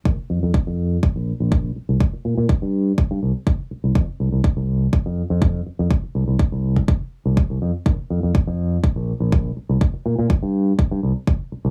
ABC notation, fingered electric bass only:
X:1
M:4/4
L:1/16
Q:1/4=123
K:Bblyd
V:1 name="Fingered electric bass" clef=bass
B,,, z F,, F,, z F,,2 z2 B,,, z B,,,2 z2 C,, | z2 B,, B,, z G,,2 z2 G,, C,, z4 C,, | F,, z C,, C,, z C,,2 z2 F,, z F,,2 z2 F,, | z2 C,, C,, z C,,2 z4 C,, z C,, F,, z |
B,,, z F,, F,, z F,,2 z2 B,,, z B,,,2 z2 C,, | z2 B,, B,, z G,,2 z2 G,, C,, z4 C,, |]